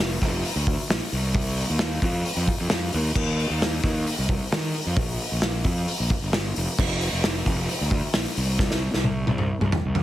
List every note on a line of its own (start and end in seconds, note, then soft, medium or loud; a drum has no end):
0.00 0.18 F1 medium
0.00 snare loud
0.22 0.42 F1 loud
0.22 kick medium
0.22 snare soft
0.22 open hi-hat medium
0.45 open hi-hat medium
0.56 0.76 D2 loud
0.67 kick medium
0.67 open hi-hat medium
0.90 1.00 A#1 loud
0.90 snare loud
0.90 open hi-hat loud
1.12 1.62 C2 loud
1.12 open hi-hat medium
1.35 kick loud
1.35 open hi-hat medium
1.57 open hi-hat medium
1.70 1.99 D#2 medium
1.79 snare loud
1.79 open hi-hat medium
2.02 2.23 F2 loud
2.02 kick medium
2.02 open hi-hat medium
2.25 open hi-hat medium
2.36 2.47 F2 loud
2.47 kick medium
2.47 open hi-hat medium
2.61 2.70 F2 medium
2.70 2.91 F2 medium
2.70 snare loud
2.70 open hi-hat medium
2.93 3.14 D#2 medium
2.93 open hi-hat medium
3.15 3.46 D#2 medium
3.15 kick loud
3.15 crash loud
3.39 open hi-hat medium
3.50 3.80 D#2 medium
3.62 snare loud
3.62 open hi-hat medium
3.84 4.04 D#2 loud
3.84 kick medium
3.84 snare soft
3.84 open hi-hat medium
4.07 open hi-hat medium
4.18 4.38 C2 loud
4.29 kick loud
4.29 open hi-hat medium
4.52 4.72 D#3 loud
4.52 snare loud
4.52 open hi-hat medium
4.74 open hi-hat medium
4.86 4.96 F2 medium
4.96 5.17 A#1 loud
4.96 kick loud
4.96 open hi-hat medium
5.19 open hi-hat medium
5.32 5.61 A#1 medium
5.42 snare loud
5.42 open hi-hat medium
5.64 5.85 F2 loud
5.64 kick medium
5.64 open hi-hat medium
5.88 open hi-hat medium
6.00 6.09 A#1 loud
6.09 kick medium
6.09 open hi-hat medium
6.22 6.52 G1 medium
6.33 snare loud
6.33 open hi-hat medium
6.56 6.67 F1 loud
6.56 open hi-hat medium
6.79 7.09 F1 loud
6.79 kick loud
6.79 crash loud
7.01 open hi-hat medium
7.12 7.42 F1 medium
7.24 snare loud
7.24 open hi-hat medium
7.46 7.66 F1 loud
7.46 kick medium
7.46 open hi-hat medium
7.69 open hi-hat medium
7.81 8.01 D2 loud
7.91 kick medium
7.91 open hi-hat medium
8.13 8.25 A#1 loud
8.13 snare loud
8.13 open hi-hat medium
8.37 8.87 C2 loud
8.37 open hi-hat medium
8.59 kick loud
8.59 snare medium
8.71 snare medium
8.94 9.24 C2 medium
8.94 snare medium
9.04 high tom medium
9.27 9.48 C2 loud
9.27 high tom medium
9.38 mid tom medium
9.61 9.72 C2 loud
9.61 mid tom medium
9.72 mid tom loud
9.85 10.03 C2 medium
9.95 mid tom loud